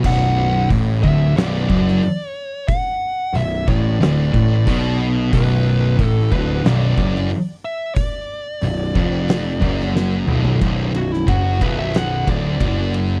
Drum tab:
CC |x---------------|----------------|----------------|----------------|
RD |----------------|----------------|----------------|----------------|
HH |----o---o---o---|o---o---o---o---|o---o---o---o---|o---o---o-------|
SD |--------o--o----|--------o-------|--------o--o----|--------o--oo---|
T2 |----------------|----------------|----------------|--------------o-|
FT |----------------|----------------|----------------|---------------o|
BD |o---o-o---o-----|o-----o---o-o---|o---o-o---o-----|o-----o---o-----|

CC |----------------|
RD |x-x-x-x-x-x-x-x-|
HH |----------------|
SD |---o----o-------|
T2 |----------------|
FT |----------------|
BD |o---o-o---o-o---|